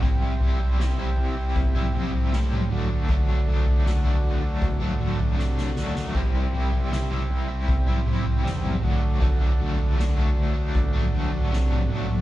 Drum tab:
CC |----------------|----------------|x---------------|----------------|
SD |----o-------o---|----o-------oooo|----o-------o---|----o-------o---|
T2 |---------oo--o--|---------oo-----|---------oo--o--|---------oo--o-o|
FT |o-oo-o--o--oo-o-|oooo-o--o--o----|o-oo-o--o--oo-o-|oooo-o--o--oo-o-|
BD |o-------o-------|o-------o-------|o-------o-------|o-------o-------|